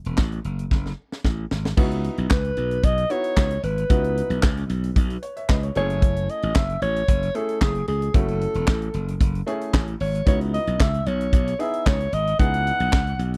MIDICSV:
0, 0, Header, 1, 5, 480
1, 0, Start_track
1, 0, Tempo, 530973
1, 1603, Time_signature, 4, 2, 24, 8
1, 12087, End_track
2, 0, Start_track
2, 0, Title_t, "Alto saxophone"
2, 0, Program_c, 0, 65
2, 2089, Note_on_c, 0, 71, 99
2, 2570, Note_on_c, 0, 75, 117
2, 2584, Note_off_c, 0, 71, 0
2, 2811, Note_on_c, 0, 73, 106
2, 2824, Note_off_c, 0, 75, 0
2, 3287, Note_off_c, 0, 73, 0
2, 3293, Note_on_c, 0, 71, 98
2, 4212, Note_off_c, 0, 71, 0
2, 5219, Note_on_c, 0, 73, 118
2, 5697, Note_on_c, 0, 75, 104
2, 5710, Note_off_c, 0, 73, 0
2, 5928, Note_on_c, 0, 76, 112
2, 5941, Note_off_c, 0, 75, 0
2, 6165, Note_off_c, 0, 76, 0
2, 6169, Note_on_c, 0, 73, 110
2, 6648, Note_on_c, 0, 69, 93
2, 6662, Note_off_c, 0, 73, 0
2, 6881, Note_off_c, 0, 69, 0
2, 6887, Note_on_c, 0, 68, 95
2, 7108, Note_off_c, 0, 68, 0
2, 7125, Note_on_c, 0, 68, 92
2, 7367, Note_on_c, 0, 69, 99
2, 7381, Note_off_c, 0, 68, 0
2, 8325, Note_off_c, 0, 69, 0
2, 9051, Note_on_c, 0, 73, 86
2, 9270, Note_off_c, 0, 73, 0
2, 9293, Note_on_c, 0, 73, 91
2, 9399, Note_off_c, 0, 73, 0
2, 9529, Note_on_c, 0, 75, 88
2, 9771, Note_on_c, 0, 76, 97
2, 9785, Note_off_c, 0, 75, 0
2, 10006, Note_on_c, 0, 73, 89
2, 10020, Note_off_c, 0, 76, 0
2, 10487, Note_on_c, 0, 76, 95
2, 10501, Note_off_c, 0, 73, 0
2, 10726, Note_on_c, 0, 73, 95
2, 10739, Note_off_c, 0, 76, 0
2, 10970, Note_on_c, 0, 75, 106
2, 10983, Note_off_c, 0, 73, 0
2, 11200, Note_off_c, 0, 75, 0
2, 11206, Note_on_c, 0, 78, 122
2, 12087, Note_off_c, 0, 78, 0
2, 12087, End_track
3, 0, Start_track
3, 0, Title_t, "Grand piano"
3, 0, Program_c, 1, 0
3, 1601, Note_on_c, 1, 59, 91
3, 1603, Note_on_c, 1, 63, 81
3, 1605, Note_on_c, 1, 64, 85
3, 1607, Note_on_c, 1, 66, 105
3, 2048, Note_off_c, 1, 59, 0
3, 2049, Note_off_c, 1, 63, 0
3, 2051, Note_off_c, 1, 64, 0
3, 2052, Note_off_c, 1, 66, 0
3, 2799, Note_on_c, 1, 59, 77
3, 2802, Note_on_c, 1, 63, 68
3, 2805, Note_on_c, 1, 64, 71
3, 2806, Note_on_c, 1, 66, 85
3, 3140, Note_off_c, 1, 59, 0
3, 3141, Note_off_c, 1, 63, 0
3, 3143, Note_off_c, 1, 64, 0
3, 3143, Note_off_c, 1, 66, 0
3, 3521, Note_on_c, 1, 59, 82
3, 3523, Note_on_c, 1, 63, 71
3, 3525, Note_on_c, 1, 64, 73
3, 3528, Note_on_c, 1, 66, 87
3, 3969, Note_off_c, 1, 59, 0
3, 3970, Note_off_c, 1, 63, 0
3, 3971, Note_off_c, 1, 64, 0
3, 3972, Note_off_c, 1, 66, 0
3, 4724, Note_on_c, 1, 73, 69
3, 4842, Note_off_c, 1, 73, 0
3, 4850, Note_on_c, 1, 76, 71
3, 4855, Note_on_c, 1, 73, 59
3, 4957, Note_off_c, 1, 76, 0
3, 4960, Note_off_c, 1, 73, 0
3, 4964, Note_on_c, 1, 75, 76
3, 4970, Note_on_c, 1, 71, 64
3, 5084, Note_off_c, 1, 75, 0
3, 5088, Note_off_c, 1, 71, 0
3, 5094, Note_on_c, 1, 73, 65
3, 5204, Note_on_c, 1, 57, 80
3, 5206, Note_on_c, 1, 61, 74
3, 5210, Note_on_c, 1, 64, 78
3, 5211, Note_on_c, 1, 68, 90
3, 5320, Note_off_c, 1, 73, 0
3, 5975, Note_off_c, 1, 57, 0
3, 5976, Note_off_c, 1, 61, 0
3, 5977, Note_off_c, 1, 64, 0
3, 5978, Note_off_c, 1, 68, 0
3, 6640, Note_on_c, 1, 57, 78
3, 6642, Note_on_c, 1, 61, 72
3, 6645, Note_on_c, 1, 64, 71
3, 6647, Note_on_c, 1, 68, 80
3, 6981, Note_off_c, 1, 57, 0
3, 6981, Note_off_c, 1, 61, 0
3, 6983, Note_off_c, 1, 64, 0
3, 6984, Note_off_c, 1, 68, 0
3, 7358, Note_on_c, 1, 57, 77
3, 7361, Note_on_c, 1, 61, 74
3, 7363, Note_on_c, 1, 64, 74
3, 7366, Note_on_c, 1, 66, 81
3, 7807, Note_off_c, 1, 57, 0
3, 7809, Note_off_c, 1, 61, 0
3, 7809, Note_off_c, 1, 64, 0
3, 7811, Note_off_c, 1, 66, 0
3, 8556, Note_on_c, 1, 57, 90
3, 8560, Note_on_c, 1, 61, 82
3, 8561, Note_on_c, 1, 64, 85
3, 8563, Note_on_c, 1, 68, 98
3, 8899, Note_off_c, 1, 57, 0
3, 8900, Note_off_c, 1, 61, 0
3, 8901, Note_off_c, 1, 64, 0
3, 8902, Note_off_c, 1, 68, 0
3, 9276, Note_on_c, 1, 59, 77
3, 9277, Note_on_c, 1, 63, 69
3, 9281, Note_on_c, 1, 64, 69
3, 9284, Note_on_c, 1, 66, 81
3, 9726, Note_off_c, 1, 59, 0
3, 9727, Note_off_c, 1, 63, 0
3, 9728, Note_off_c, 1, 64, 0
3, 9730, Note_off_c, 1, 66, 0
3, 10479, Note_on_c, 1, 59, 76
3, 10480, Note_on_c, 1, 63, 68
3, 10483, Note_on_c, 1, 64, 69
3, 10485, Note_on_c, 1, 68, 83
3, 10820, Note_off_c, 1, 59, 0
3, 10820, Note_off_c, 1, 63, 0
3, 10822, Note_off_c, 1, 64, 0
3, 10823, Note_off_c, 1, 68, 0
3, 11199, Note_on_c, 1, 59, 76
3, 11202, Note_on_c, 1, 63, 68
3, 11202, Note_on_c, 1, 64, 70
3, 11204, Note_on_c, 1, 68, 84
3, 11648, Note_off_c, 1, 59, 0
3, 11649, Note_off_c, 1, 63, 0
3, 11649, Note_off_c, 1, 64, 0
3, 11650, Note_off_c, 1, 68, 0
3, 12087, End_track
4, 0, Start_track
4, 0, Title_t, "Slap bass"
4, 0, Program_c, 2, 36
4, 53, Note_on_c, 2, 28, 79
4, 138, Note_off_c, 2, 28, 0
4, 164, Note_on_c, 2, 33, 84
4, 346, Note_off_c, 2, 33, 0
4, 403, Note_on_c, 2, 30, 81
4, 586, Note_off_c, 2, 30, 0
4, 644, Note_on_c, 2, 30, 91
4, 826, Note_off_c, 2, 30, 0
4, 1124, Note_on_c, 2, 33, 87
4, 1306, Note_off_c, 2, 33, 0
4, 1369, Note_on_c, 2, 32, 86
4, 1549, Note_off_c, 2, 32, 0
4, 1603, Note_on_c, 2, 37, 118
4, 1882, Note_off_c, 2, 37, 0
4, 1971, Note_on_c, 2, 35, 83
4, 2056, Note_off_c, 2, 35, 0
4, 2085, Note_on_c, 2, 37, 101
4, 2267, Note_off_c, 2, 37, 0
4, 2325, Note_on_c, 2, 35, 96
4, 2506, Note_off_c, 2, 35, 0
4, 2562, Note_on_c, 2, 35, 99
4, 2745, Note_off_c, 2, 35, 0
4, 3045, Note_on_c, 2, 37, 99
4, 3226, Note_off_c, 2, 37, 0
4, 3283, Note_on_c, 2, 32, 94
4, 3465, Note_off_c, 2, 32, 0
4, 3525, Note_on_c, 2, 37, 115
4, 3803, Note_off_c, 2, 37, 0
4, 3887, Note_on_c, 2, 35, 90
4, 3974, Note_off_c, 2, 35, 0
4, 4008, Note_on_c, 2, 37, 98
4, 4188, Note_off_c, 2, 37, 0
4, 4245, Note_on_c, 2, 35, 97
4, 4426, Note_off_c, 2, 35, 0
4, 4485, Note_on_c, 2, 35, 101
4, 4667, Note_off_c, 2, 35, 0
4, 4966, Note_on_c, 2, 37, 104
4, 5147, Note_off_c, 2, 37, 0
4, 5206, Note_on_c, 2, 30, 99
4, 5666, Note_off_c, 2, 30, 0
4, 5815, Note_on_c, 2, 33, 91
4, 5899, Note_off_c, 2, 33, 0
4, 5926, Note_on_c, 2, 30, 92
4, 6107, Note_off_c, 2, 30, 0
4, 6161, Note_on_c, 2, 33, 93
4, 6344, Note_off_c, 2, 33, 0
4, 6404, Note_on_c, 2, 30, 108
4, 6586, Note_off_c, 2, 30, 0
4, 6882, Note_on_c, 2, 30, 102
4, 7065, Note_off_c, 2, 30, 0
4, 7124, Note_on_c, 2, 37, 94
4, 7306, Note_off_c, 2, 37, 0
4, 7363, Note_on_c, 2, 30, 106
4, 7642, Note_off_c, 2, 30, 0
4, 7729, Note_on_c, 2, 28, 83
4, 7815, Note_off_c, 2, 28, 0
4, 7843, Note_on_c, 2, 33, 90
4, 8026, Note_off_c, 2, 33, 0
4, 8083, Note_on_c, 2, 30, 99
4, 8266, Note_off_c, 2, 30, 0
4, 8320, Note_on_c, 2, 30, 103
4, 8503, Note_off_c, 2, 30, 0
4, 8801, Note_on_c, 2, 33, 98
4, 8984, Note_off_c, 2, 33, 0
4, 9044, Note_on_c, 2, 32, 107
4, 9226, Note_off_c, 2, 32, 0
4, 9281, Note_on_c, 2, 37, 118
4, 9560, Note_off_c, 2, 37, 0
4, 9648, Note_on_c, 2, 35, 91
4, 9734, Note_off_c, 2, 35, 0
4, 9765, Note_on_c, 2, 37, 98
4, 9947, Note_off_c, 2, 37, 0
4, 10001, Note_on_c, 2, 35, 89
4, 10184, Note_off_c, 2, 35, 0
4, 10240, Note_on_c, 2, 35, 98
4, 10423, Note_off_c, 2, 35, 0
4, 10724, Note_on_c, 2, 37, 93
4, 10906, Note_off_c, 2, 37, 0
4, 10960, Note_on_c, 2, 32, 97
4, 11143, Note_off_c, 2, 32, 0
4, 11204, Note_on_c, 2, 37, 112
4, 11483, Note_off_c, 2, 37, 0
4, 11572, Note_on_c, 2, 35, 85
4, 11657, Note_off_c, 2, 35, 0
4, 11687, Note_on_c, 2, 37, 106
4, 11868, Note_off_c, 2, 37, 0
4, 11925, Note_on_c, 2, 35, 93
4, 12087, Note_off_c, 2, 35, 0
4, 12087, End_track
5, 0, Start_track
5, 0, Title_t, "Drums"
5, 42, Note_on_c, 9, 42, 45
5, 133, Note_off_c, 9, 42, 0
5, 157, Note_on_c, 9, 39, 75
5, 160, Note_on_c, 9, 38, 98
5, 165, Note_on_c, 9, 36, 109
5, 248, Note_off_c, 9, 39, 0
5, 250, Note_off_c, 9, 38, 0
5, 255, Note_off_c, 9, 36, 0
5, 288, Note_on_c, 9, 42, 43
5, 379, Note_off_c, 9, 42, 0
5, 401, Note_on_c, 9, 42, 65
5, 491, Note_off_c, 9, 42, 0
5, 532, Note_on_c, 9, 42, 51
5, 622, Note_off_c, 9, 42, 0
5, 644, Note_on_c, 9, 36, 105
5, 647, Note_on_c, 9, 38, 47
5, 735, Note_off_c, 9, 36, 0
5, 738, Note_off_c, 9, 38, 0
5, 777, Note_on_c, 9, 38, 47
5, 867, Note_off_c, 9, 38, 0
5, 1016, Note_on_c, 9, 38, 57
5, 1106, Note_off_c, 9, 38, 0
5, 1125, Note_on_c, 9, 36, 89
5, 1127, Note_on_c, 9, 38, 75
5, 1216, Note_off_c, 9, 36, 0
5, 1217, Note_off_c, 9, 38, 0
5, 1367, Note_on_c, 9, 38, 85
5, 1458, Note_off_c, 9, 38, 0
5, 1495, Note_on_c, 9, 38, 77
5, 1585, Note_off_c, 9, 38, 0
5, 1603, Note_on_c, 9, 49, 102
5, 1604, Note_on_c, 9, 36, 121
5, 1694, Note_off_c, 9, 36, 0
5, 1694, Note_off_c, 9, 49, 0
5, 1730, Note_on_c, 9, 42, 51
5, 1821, Note_off_c, 9, 42, 0
5, 1847, Note_on_c, 9, 42, 72
5, 1938, Note_off_c, 9, 42, 0
5, 1966, Note_on_c, 9, 42, 45
5, 2056, Note_off_c, 9, 42, 0
5, 2082, Note_on_c, 9, 39, 91
5, 2084, Note_on_c, 9, 38, 119
5, 2086, Note_on_c, 9, 36, 118
5, 2172, Note_off_c, 9, 39, 0
5, 2175, Note_off_c, 9, 38, 0
5, 2176, Note_off_c, 9, 36, 0
5, 2210, Note_on_c, 9, 42, 48
5, 2300, Note_off_c, 9, 42, 0
5, 2319, Note_on_c, 9, 42, 70
5, 2410, Note_off_c, 9, 42, 0
5, 2450, Note_on_c, 9, 42, 55
5, 2541, Note_off_c, 9, 42, 0
5, 2561, Note_on_c, 9, 42, 110
5, 2563, Note_on_c, 9, 36, 116
5, 2651, Note_off_c, 9, 42, 0
5, 2653, Note_off_c, 9, 36, 0
5, 2690, Note_on_c, 9, 42, 51
5, 2781, Note_off_c, 9, 42, 0
5, 2801, Note_on_c, 9, 42, 80
5, 2891, Note_off_c, 9, 42, 0
5, 2927, Note_on_c, 9, 42, 50
5, 3017, Note_off_c, 9, 42, 0
5, 3045, Note_on_c, 9, 36, 110
5, 3047, Note_on_c, 9, 39, 81
5, 3049, Note_on_c, 9, 38, 102
5, 3136, Note_off_c, 9, 36, 0
5, 3137, Note_off_c, 9, 39, 0
5, 3140, Note_off_c, 9, 38, 0
5, 3169, Note_on_c, 9, 42, 55
5, 3259, Note_off_c, 9, 42, 0
5, 3285, Note_on_c, 9, 42, 83
5, 3375, Note_off_c, 9, 42, 0
5, 3415, Note_on_c, 9, 42, 57
5, 3505, Note_off_c, 9, 42, 0
5, 3526, Note_on_c, 9, 36, 126
5, 3527, Note_on_c, 9, 42, 90
5, 3616, Note_off_c, 9, 36, 0
5, 3617, Note_off_c, 9, 42, 0
5, 3654, Note_on_c, 9, 42, 53
5, 3745, Note_off_c, 9, 42, 0
5, 3773, Note_on_c, 9, 42, 68
5, 3864, Note_off_c, 9, 42, 0
5, 3891, Note_on_c, 9, 42, 47
5, 3981, Note_off_c, 9, 42, 0
5, 4003, Note_on_c, 9, 39, 94
5, 4006, Note_on_c, 9, 38, 112
5, 4008, Note_on_c, 9, 36, 112
5, 4093, Note_off_c, 9, 39, 0
5, 4096, Note_off_c, 9, 38, 0
5, 4098, Note_off_c, 9, 36, 0
5, 4133, Note_on_c, 9, 42, 48
5, 4223, Note_off_c, 9, 42, 0
5, 4243, Note_on_c, 9, 42, 75
5, 4334, Note_off_c, 9, 42, 0
5, 4372, Note_on_c, 9, 42, 58
5, 4462, Note_off_c, 9, 42, 0
5, 4485, Note_on_c, 9, 36, 120
5, 4486, Note_on_c, 9, 42, 102
5, 4575, Note_off_c, 9, 36, 0
5, 4576, Note_off_c, 9, 42, 0
5, 4611, Note_on_c, 9, 42, 47
5, 4701, Note_off_c, 9, 42, 0
5, 4723, Note_on_c, 9, 42, 83
5, 4814, Note_off_c, 9, 42, 0
5, 4850, Note_on_c, 9, 42, 52
5, 4941, Note_off_c, 9, 42, 0
5, 4965, Note_on_c, 9, 36, 106
5, 4965, Note_on_c, 9, 39, 83
5, 4968, Note_on_c, 9, 38, 98
5, 5055, Note_off_c, 9, 39, 0
5, 5056, Note_off_c, 9, 36, 0
5, 5058, Note_off_c, 9, 38, 0
5, 5089, Note_on_c, 9, 42, 57
5, 5179, Note_off_c, 9, 42, 0
5, 5199, Note_on_c, 9, 42, 84
5, 5289, Note_off_c, 9, 42, 0
5, 5333, Note_on_c, 9, 42, 58
5, 5423, Note_off_c, 9, 42, 0
5, 5444, Note_on_c, 9, 36, 116
5, 5444, Note_on_c, 9, 42, 92
5, 5535, Note_off_c, 9, 36, 0
5, 5535, Note_off_c, 9, 42, 0
5, 5572, Note_on_c, 9, 42, 50
5, 5663, Note_off_c, 9, 42, 0
5, 5688, Note_on_c, 9, 42, 72
5, 5778, Note_off_c, 9, 42, 0
5, 5807, Note_on_c, 9, 42, 49
5, 5897, Note_off_c, 9, 42, 0
5, 5923, Note_on_c, 9, 39, 89
5, 5926, Note_on_c, 9, 38, 110
5, 5927, Note_on_c, 9, 36, 113
5, 6014, Note_off_c, 9, 39, 0
5, 6016, Note_off_c, 9, 38, 0
5, 6017, Note_off_c, 9, 36, 0
5, 6053, Note_on_c, 9, 42, 48
5, 6143, Note_off_c, 9, 42, 0
5, 6164, Note_on_c, 9, 42, 77
5, 6254, Note_off_c, 9, 42, 0
5, 6294, Note_on_c, 9, 42, 59
5, 6384, Note_off_c, 9, 42, 0
5, 6404, Note_on_c, 9, 36, 118
5, 6405, Note_on_c, 9, 42, 105
5, 6495, Note_off_c, 9, 36, 0
5, 6495, Note_off_c, 9, 42, 0
5, 6533, Note_on_c, 9, 42, 51
5, 6623, Note_off_c, 9, 42, 0
5, 6642, Note_on_c, 9, 42, 82
5, 6733, Note_off_c, 9, 42, 0
5, 6767, Note_on_c, 9, 42, 50
5, 6858, Note_off_c, 9, 42, 0
5, 6883, Note_on_c, 9, 36, 105
5, 6884, Note_on_c, 9, 39, 81
5, 6886, Note_on_c, 9, 38, 106
5, 6973, Note_off_c, 9, 36, 0
5, 6974, Note_off_c, 9, 39, 0
5, 6977, Note_off_c, 9, 38, 0
5, 7005, Note_on_c, 9, 42, 55
5, 7096, Note_off_c, 9, 42, 0
5, 7119, Note_on_c, 9, 42, 77
5, 7209, Note_off_c, 9, 42, 0
5, 7249, Note_on_c, 9, 42, 55
5, 7339, Note_off_c, 9, 42, 0
5, 7361, Note_on_c, 9, 42, 99
5, 7362, Note_on_c, 9, 36, 126
5, 7451, Note_off_c, 9, 42, 0
5, 7452, Note_off_c, 9, 36, 0
5, 7488, Note_on_c, 9, 42, 51
5, 7578, Note_off_c, 9, 42, 0
5, 7605, Note_on_c, 9, 42, 74
5, 7696, Note_off_c, 9, 42, 0
5, 7723, Note_on_c, 9, 42, 51
5, 7813, Note_off_c, 9, 42, 0
5, 7841, Note_on_c, 9, 39, 89
5, 7843, Note_on_c, 9, 38, 111
5, 7844, Note_on_c, 9, 36, 116
5, 7931, Note_off_c, 9, 39, 0
5, 7934, Note_off_c, 9, 36, 0
5, 7934, Note_off_c, 9, 38, 0
5, 7971, Note_on_c, 9, 42, 50
5, 8061, Note_off_c, 9, 42, 0
5, 8078, Note_on_c, 9, 42, 76
5, 8169, Note_off_c, 9, 42, 0
5, 8211, Note_on_c, 9, 42, 60
5, 8302, Note_off_c, 9, 42, 0
5, 8322, Note_on_c, 9, 36, 117
5, 8325, Note_on_c, 9, 42, 111
5, 8412, Note_off_c, 9, 36, 0
5, 8415, Note_off_c, 9, 42, 0
5, 8452, Note_on_c, 9, 42, 48
5, 8543, Note_off_c, 9, 42, 0
5, 8564, Note_on_c, 9, 42, 79
5, 8654, Note_off_c, 9, 42, 0
5, 8690, Note_on_c, 9, 42, 52
5, 8781, Note_off_c, 9, 42, 0
5, 8802, Note_on_c, 9, 36, 106
5, 8805, Note_on_c, 9, 39, 80
5, 8807, Note_on_c, 9, 38, 102
5, 8892, Note_off_c, 9, 36, 0
5, 8895, Note_off_c, 9, 39, 0
5, 8898, Note_off_c, 9, 38, 0
5, 8927, Note_on_c, 9, 42, 53
5, 9017, Note_off_c, 9, 42, 0
5, 9040, Note_on_c, 9, 46, 86
5, 9131, Note_off_c, 9, 46, 0
5, 9172, Note_on_c, 9, 42, 57
5, 9263, Note_off_c, 9, 42, 0
5, 9281, Note_on_c, 9, 36, 120
5, 9282, Note_on_c, 9, 42, 95
5, 9371, Note_off_c, 9, 36, 0
5, 9373, Note_off_c, 9, 42, 0
5, 9411, Note_on_c, 9, 42, 52
5, 9501, Note_off_c, 9, 42, 0
5, 9529, Note_on_c, 9, 42, 75
5, 9619, Note_off_c, 9, 42, 0
5, 9647, Note_on_c, 9, 42, 49
5, 9737, Note_off_c, 9, 42, 0
5, 9764, Note_on_c, 9, 39, 88
5, 9765, Note_on_c, 9, 36, 112
5, 9767, Note_on_c, 9, 38, 113
5, 9855, Note_off_c, 9, 39, 0
5, 9856, Note_off_c, 9, 36, 0
5, 9857, Note_off_c, 9, 38, 0
5, 9892, Note_on_c, 9, 42, 48
5, 9983, Note_off_c, 9, 42, 0
5, 10001, Note_on_c, 9, 42, 76
5, 10091, Note_off_c, 9, 42, 0
5, 10130, Note_on_c, 9, 42, 60
5, 10221, Note_off_c, 9, 42, 0
5, 10241, Note_on_c, 9, 36, 120
5, 10241, Note_on_c, 9, 42, 107
5, 10332, Note_off_c, 9, 36, 0
5, 10332, Note_off_c, 9, 42, 0
5, 10373, Note_on_c, 9, 42, 54
5, 10463, Note_off_c, 9, 42, 0
5, 10482, Note_on_c, 9, 42, 80
5, 10572, Note_off_c, 9, 42, 0
5, 10608, Note_on_c, 9, 42, 51
5, 10698, Note_off_c, 9, 42, 0
5, 10724, Note_on_c, 9, 36, 109
5, 10727, Note_on_c, 9, 39, 83
5, 10729, Note_on_c, 9, 38, 99
5, 10815, Note_off_c, 9, 36, 0
5, 10817, Note_off_c, 9, 39, 0
5, 10820, Note_off_c, 9, 38, 0
5, 10851, Note_on_c, 9, 42, 53
5, 10942, Note_off_c, 9, 42, 0
5, 10962, Note_on_c, 9, 42, 89
5, 11053, Note_off_c, 9, 42, 0
5, 11095, Note_on_c, 9, 42, 59
5, 11186, Note_off_c, 9, 42, 0
5, 11205, Note_on_c, 9, 36, 121
5, 11206, Note_on_c, 9, 42, 94
5, 11295, Note_off_c, 9, 36, 0
5, 11296, Note_off_c, 9, 42, 0
5, 11334, Note_on_c, 9, 42, 54
5, 11424, Note_off_c, 9, 42, 0
5, 11452, Note_on_c, 9, 42, 72
5, 11542, Note_off_c, 9, 42, 0
5, 11570, Note_on_c, 9, 42, 50
5, 11660, Note_off_c, 9, 42, 0
5, 11686, Note_on_c, 9, 39, 90
5, 11688, Note_on_c, 9, 36, 120
5, 11689, Note_on_c, 9, 38, 110
5, 11777, Note_off_c, 9, 39, 0
5, 11778, Note_off_c, 9, 36, 0
5, 11779, Note_off_c, 9, 38, 0
5, 11814, Note_on_c, 9, 42, 46
5, 11904, Note_off_c, 9, 42, 0
5, 11928, Note_on_c, 9, 42, 76
5, 12018, Note_off_c, 9, 42, 0
5, 12057, Note_on_c, 9, 42, 61
5, 12087, Note_off_c, 9, 42, 0
5, 12087, End_track
0, 0, End_of_file